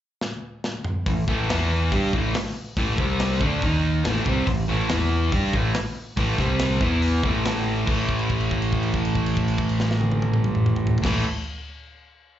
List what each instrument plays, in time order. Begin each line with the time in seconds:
0.21 snare
0.64 snare
0.84 mid tom
1.06 fingered electric bass A1, overdriven electric guitar A2 E3, kick, open hi-hat
1.28 fingered electric bass A1, overdriven electric guitar A2 E3 A3, kick
1.49 fingered electric bass E2, overdriven electric guitar E3 B3 E4, snare, open hi-hat
1.92 fingered electric bass G2, overdriven electric guitar G3 D4 G4, kick, open hi-hat
2.13 fingered electric bass A1, overdriven electric guitar A2 E3 A3, kick
2.35 snare, open hi-hat
2.46 snare
2.77 fingered electric bass A1, overdriven electric guitar A2 E3 A3, kick, open hi-hat
2.98 fingered electric bass C2, overdriven electric guitar C3 G3 C4, kick
3.19 snare, open hi-hat
3.41 fingered electric bass D2, overdriven electric guitar D3 A3 D4, kick
3.62 fingered electric bass D#2, overdriven electric guitar D#3 A#3 D#4, kick, open hi-hat
4.04 fingered electric bass A1, overdriven electric guitar A2 E3 A3, snare, open hi-hat
4.16 snare
4.26 fingered electric bass C2, overdriven electric guitar C3 G3 C4, kick
4.47 fingered electric bass A1, overdriven electric guitar A2 E3, kick, open hi-hat
4.68 fingered electric bass A1, overdriven electric guitar A2 E3 A3
4.89 fingered electric bass E2, overdriven electric guitar E3 B3 E4, snare, open hi-hat
5.32 fingered electric bass G2, overdriven electric guitar G3 D4 G4, kick, open hi-hat
5.53 fingered electric bass A1, overdriven electric guitar A2 E3 A3, kick
5.74 snare, open hi-hat
6.17 fingered electric bass A1, overdriven electric guitar A2 E3 A3, kick, open hi-hat
6.38 fingered electric bass C2, overdriven electric guitar C3 G3 C4, kick, snare
6.59 snare, open hi-hat
6.81 fingered electric bass E2, overdriven electric guitar E3 B3 E4, kick
7.02 open hi-hat
7.23 fingered electric bass A1, overdriven electric guitar A2 E3 A3, kick
7.45 snare, open hi-hat
7.56 snare
7.86 fingered electric bass A1, overdriven electric guitar A2 E3 A3, kick, crash
8.09 kick, crash
8.19 crash
8.30 kick, crash
8.40 crash
8.51 kick, crash
8.62 crash
8.72 kick, crash
8.83 crash
8.94 kick, crash
9.05 crash
9.15 kick, crash
9.26 crash
9.37 kick, crash
9.48 crash
9.58 kick, crash
9.69 crash
9.80 snare
9.91 snare
10.01 high tom
10.11 high tom
10.22 high tom
10.34 mid tom
10.44 mid tom
10.55 mid tom
10.66 mid tom
10.76 mid tom
10.87 floor tom
10.98 floor tom
11.02 fingered electric bass A1, overdriven electric guitar A2 E3 A3, kick, snare, crash